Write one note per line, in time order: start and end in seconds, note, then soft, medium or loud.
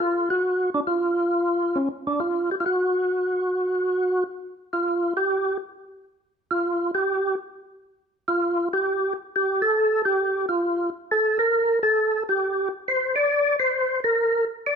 0.00 0.29 F4 medium
0.30 0.70 F#4 medium
0.74 0.80 D4 medium
0.87 1.78 F4 medium
1.75 1.89 C#4 medium
2.07 2.20 D4 medium
2.20 2.50 F4 medium
2.51 2.55 G4 medium
2.60 2.64 F4 medium
2.66 4.24 F#4 medium
4.73 5.13 F4 medium
5.17 5.57 G4 medium
6.51 6.91 F4 medium
6.95 7.35 G4 medium
8.28 8.68 F4 medium
8.73 9.13 G4 medium
9.36 9.62 G4 medium
9.62 10.02 A4 loud
10.05 10.46 G4 medium
10.49 10.90 F4 medium
11.11 11.38 A4 medium
11.39 11.79 A#4 medium
11.83 12.23 A4 medium
12.29 12.69 G4 medium
12.88 13.15 C5 medium
13.16 13.56 D5 loud
13.59 14.00 C5 medium
14.04 14.45 A#4 medium
14.66 14.75 D5 medium